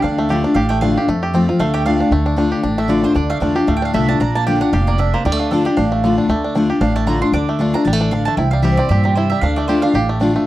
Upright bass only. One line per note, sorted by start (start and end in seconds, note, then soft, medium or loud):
0.03 0.44 D2 loud
0.55 0.96 A1 loud
1.08 1.48 F2 medium
1.60 2.00 D2 loud
2.11 2.52 D2 medium
2.64 3.04 A1 medium
3.15 3.36 D2 loud
3.41 3.64 E2 medium
3.68 3.90 D2 medium
3.94 4.17 C2 medium
4.20 4.61 A#1 loud
4.73 5.13 F1 medium
5.25 5.66 D2 loud
5.78 6.18 A1 medium
6.29 6.69 D2 loud
6.80 7.21 A1 loud
7.32 7.73 D2 loud
7.85 8.26 A1 medium
8.37 8.78 C2 loud
8.90 9.30 G2 medium
9.42 9.82 D2 loud
9.94 10.35 A1 loud